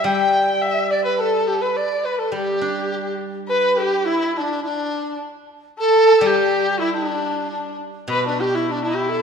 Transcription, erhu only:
\new Staff \with { instrumentName = "Erhu" } { \time 2/4 \tempo 4 = 104 g''4 e''8 d''16 b'16 | a'8. b'16 d''8 b'16 a'16 | g'4. r8 | b'8 g'8 e'8 d'8 |
d'4 r4 | a'8. g'4 e'16 | d'4 d'8 r8 | b'16 d'16 g'16 e'16 d'16 e'8. | }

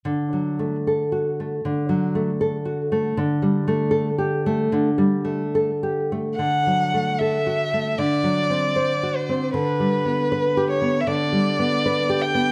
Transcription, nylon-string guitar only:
\new Staff \with { instrumentName = "Nylon-string guitar" } { \time 4/4 \key d \major \tempo 4 = 77 \tuplet 3/2 { d8 fis8 a8 a'8 fis'8 a8 d8 fis8 a8 a'8 fis'8 a8 } | \tuplet 3/2 { d8 g8 a8 a'8 g'8 a8 d8 g8 a8 a'8 g'8 a8 } | \tuplet 3/2 { d8 fis8 a8 a'8 fis'8 a8 d8 fis8 c'8 c''8 fis'8 c'8 } | \tuplet 3/2 { d8 g8 b8 b'8 g'8 b8 d8 g8 b8 b'8 g'8 b8 } | }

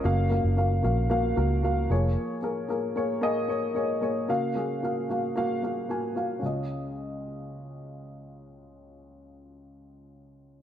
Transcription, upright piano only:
<<
  \new Staff \with { instrumentName = "Upright piano" } { \time 4/4 \key des \major \tempo 4 = 113 <bes ges' f''>8 <bes ges' f''>8 <bes ges' f''>8 <bes ges' f''>8 <bes ges' f''>8 <bes ges' bes'>8 <bes ges' f''>8 <bes aes' des''>8~ | <bes aes' des''>8 <bes aes' bes'>8 <bes aes' bes'>8 <bes aes' des''>8 <bes aes' ees''>8 <bes aes' des''>8 <bes aes' des''>8 <bes aes' des''>8 | <bes ges' f''>8 <bes ges' aes'>8 <bes ges' f''>8 <bes ges' f''>8 <bes ges' f''>8 <bes ges' f''>8 <bes ges' aes''>8 <bes ges' f''>8 | <des' f' ees''>1~ |
<des' f' ees''>1 | }
  \new Staff \with { instrumentName = "Upright piano" } { \clef bass \time 4/4 \key des \major des4. r2 f8~ | f4 r2. | des4. r2 r8 | des,1~ |
des,1 | }
>>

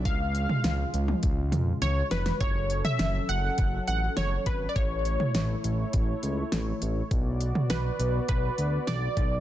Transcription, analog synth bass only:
\new Staff \with { instrumentName = "Analog synth bass" } { \clef bass \time 4/4 \key fis \minor \tempo 4 = 102 cis,4 cis,8 cis,8 cis,8 eis,8 cis,8 eis,,8 | fis,,4 fis,,8 fis,,8 fis,,8 a,,8 fis,,8 gis,,8 | a,,4 a,,8 a,,8 a,,8 cis,8 a,,8 a,,8 | b,,4 b,,8 b,,8 b,,8 d,8 b,,8 b,,8 | }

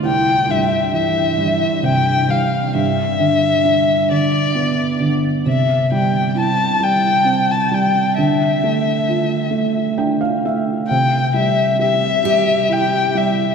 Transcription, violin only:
\new Staff \with { instrumentName = "Violin" } { \time 6/8 \key c \major \tempo 4. = 44 g''8 e''8 e''4 g''8 f''8 | e''4. d''4 r8 | e''8 g''8 a''8 g''8. a''16 g''8 | e''2 r4 |
g''8 e''8 e''4 g''8 e''8 | }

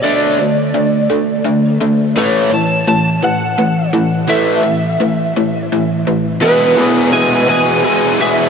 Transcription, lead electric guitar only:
\new Staff \with { instrumentName = "Lead electric guitar" } { \time 6/8 \key e \major \tempo 4. = 56 d''2~ d''8 r8 | cis''8 a''8 a''8 fis''4 r8 | e''2 r4 | b'4 gis''8 gis''4 e''8 | }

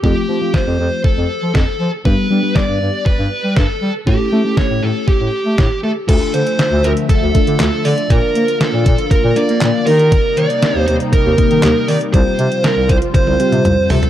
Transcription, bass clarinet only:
\new Staff \with { instrumentName = "Bass clarinet" } { \clef bass \time 4/4 \key a \minor \tempo 4 = 119 f,16 r16 f16 r8 f,16 f,16 r8 f,16 r16 f16 f,16 r16 f16 r16 | g,16 r16 g16 r8 g,16 g,16 r8 g,16 r16 g16 g,16 r16 g16 r16 | a,16 r16 a16 r8 a,16 a,16 r8 a,16 r16 a16 a,16 r16 a16 r16 | \key d \minor d,16 r16 d16 r8 d,16 d,16 r8 d,16 r16 d16 d,16 r16 d16 r16 |
bes,16 r16 bes16 r8 bes,16 bes,16 r8 bes,16 r16 bes16 bes,16 r16 ees8~ | ees16 r16 ees16 r8 ees,16 ees,16 r8 ees,16 r16 ees16 ees,16 r16 ees16 r16 | c,16 r16 c16 r8 c,16 c,16 r8 c,16 r16 c16 c,16 r16 c16 r16 | }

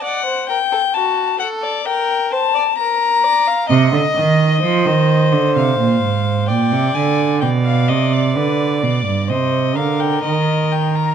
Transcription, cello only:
\new Staff \with { instrumentName = "Cello" } { \clef bass \time 4/4 \key c \minor \tempo 4 = 64 r1 | c16 d16 ees8 f16 ees8 d16 c16 bes,16 aes,8 bes,16 c16 d8 | b,8 c8 d8 b,16 g,16 c8 d8 ees4 | }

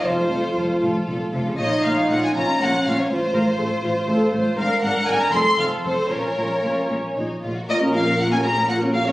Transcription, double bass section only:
\new Staff \with { instrumentName = "Double bass section" } { \clef bass \time 6/8 \key bes \minor \tempo 4. = 79 f,,8 f,,8 f,,8 f,,8 f,,8 f,,8 | bes,,8 bes,,8 bes,,8 bes,,8 bes,,8 bes,,8 | a,,8 a,,8 a,,8 a,,8 a,,8 a,,8 | aes,,8 aes,,8 aes,,8 f,,8 f,,8 f,,8 |
bes,,8 bes,,8 bes,,8 bes,,8 bes,,8 bes,,8 | bes,,2. | }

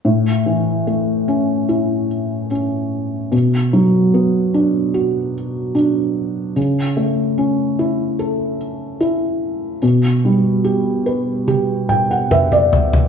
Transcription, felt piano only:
\new Staff \with { instrumentName = "Felt piano" } { \time 4/4 \key a \mixolydian \tempo 4 = 73 << { r1 | r1 | r1 | r2 r8 g''16 fis''16 e''16 d''8. | } \\ { a,8 e8 a8 cis'8 e'4 cis'4 | b,8 fis8 b8 d'8 fis'4 d'4 | cis8 a8 cis'8 e'8 a'4 e'4 | b,8 g8 g'8 b'8 g'4 b'4 | } >> }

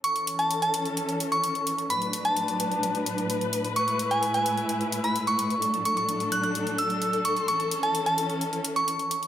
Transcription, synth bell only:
\new Staff \with { instrumentName = "Synth bell" } { \time 4/4 \key a \major \tempo 4 = 129 cis'''8 r16 a''8 a''8 r4 cis'''8 r8. | b''8 r16 a''4. r4. r16 | cis'''8 r16 gis''8 gis''8 r4 b''8 cis'''8. | r8 cis'''16 cis'''16 r8 fis'''16 fis'''16 r8 e'''8 r8 cis'''8 |
cis'''8 r16 a''8 a''8 r4 cis'''8 r8. | }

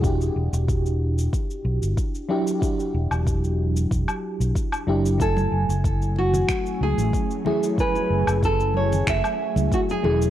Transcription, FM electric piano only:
\new Staff \with { instrumentName = "FM electric piano" } { \time 4/4 \key fis \minor \tempo 4 = 93 <d' e' fis' g'>2.~ <d' e' fis' g'>8 <fis d' e' g'>8 | <d' e' fis' g'>2.~ <d' e' fis' g'>8 <fis d' e' g'>8 | <fis a e' gis''>2.~ <fis a e' gis''>8 <fis a e' gis'>8 | <fis a e' gis''>2.~ <fis a e' gis''>8 <fis a e' gis'>8 | }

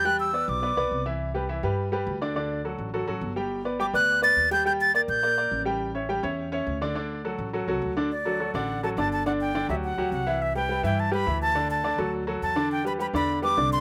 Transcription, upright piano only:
\new Staff \with { instrumentName = "Upright piano" } { \time 4/4 \key d \mixolydian \tempo 4 = 209 <g g' g''>4 <b b' d''>4 <b b' d''>8 <b b' d''>4 <e e' e''>8~ | <e e' e''>8 <g g' b'>8 <e e' e''>8 <g g' b'>4 <g g' b'>4 <d d' d''>8 | <d d' d''>4 <fis fis' a'>4 <fis fis' a'>8 <fis fis' a'>4 <g g' g''>8~ | <g g' g''>8 <b b' d''>8 <g g' g''>8 <b b' d''>4 <b b' d''>4 <g g' g''>8 |
<g g' g''>4 <bes bes' d''>4 <bes bes' d''>8 <bes bes' d''>4 <g g' g''>8~ | <g g' g''>8 <cis' cis'' e''>8 <g g' g''>8 <cis' cis'' e''>4 <cis' cis'' e''>4 <d d' d''>8 | <d d' d''>4 <fis fis' a'>4 <fis fis' a'>8 <fis fis' a'>4 <d d' d''>8 | r8 <fis fis' a'>8 <fis fis' a'>8 <d d' d''>4 <fis fis' a'>8 <d d' d''>4 |
<d d' d''>4 <d d' d''>8 <fis fis' g'>4 <fis fis' g'>4 <e e' e''>8~ | <e e' e''>8 <g g' b'>8 <g g' b'>8 <e e' e''>4 <g g' b'>8 <e e' e''>4 | <d d' d''>4 <d d' d''>8 <fis fis' a'>4 <fis fis' a'>4 <d d' d''>8~ | <d d' d''>8 <g g' b'>8 <g g' b'>8 <d d' d''>4 <g g' b'>8 <d d' d''>4 | }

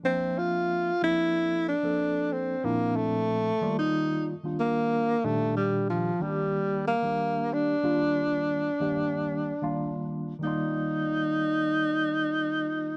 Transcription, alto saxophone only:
\new Staff \with { instrumentName = "Alto saxophone" } { \time 4/4 \key ees \lydian \tempo 4 = 92 c'8 f'4 fes'4 d'4 c'8 | bes8 a4~ a16 ees'8. r8 bes4 | a8 g8 f8 g4 bes4 d'8~ | d'2.~ d'8 r8 |
ees'1 | }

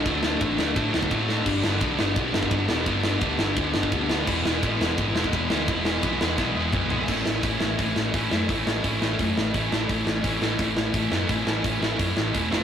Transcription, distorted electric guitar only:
\new Staff \with { instrumentName = "Distorted electric guitar" } { \time 4/4 \key a \major \tempo 4 = 171 <d fis a d'>8 <d fis a d'>8 <d fis a d'>8 <d fis a d'>8 <d fis a d'>8 <d fis a d'>8 <d fis a d'>8 <d fis a d'>8 | <g, d g b d'>8 <g, d g b d'>8 <g, d g b d'>8 <g, d g b d'>8 <g, d g b d'>8 <g, d g b d'>8 <g, d g b d'>8 <g, d g b d'>8 | <g, d g b d'>8 <g, d g b d'>8 <g, d g b d'>8 <g, d g b d'>8 <g, d g b d'>8 <g, d g b d'>8 <g, d g b d'>8 <g, d g b d'>8 | <e gis b e'>8 <e gis b e'>8 <e gis b e'>8 <e gis b e'>8 <e gis b e'>8 <e gis b e'>8 <e gis b e'>8 <e gis b e'>8 |
<e gis b e'>8 <e gis b e'>8 <e gis b e'>8 <e gis b e'>8 <e gis b e'>8 <e gis b e'>8 <e gis b e'>8 <e gis b e'>8 | <a, e a cis' e'>4 <a, e a cis' e'>8 <a, e a cis' e'>8 <a, e a cis' e'>4 <a, e a cis' e'>8 <a, e a cis' e'>8 | <a, e a cis' e'>4 <a, e a cis' e'>8 <a, e a cis' e'>8 <a, e a cis' e'>4 <a, e a cis' e'>8 <a, e a cis' e'>8 | <a, e a cis' e'>4 <a, e a cis' e'>8 <a, e a cis' e'>8 <a, e a cis' e'>4 <a, e a cis' e'>8 <a, e a cis' e'>8 |
<a, e a cis' e'>4 <a, e a cis' e'>8 <a, e a cis' e'>8 <a, e a cis' e'>4 <a, e a cis' e'>8 <f a c' f'>8 | }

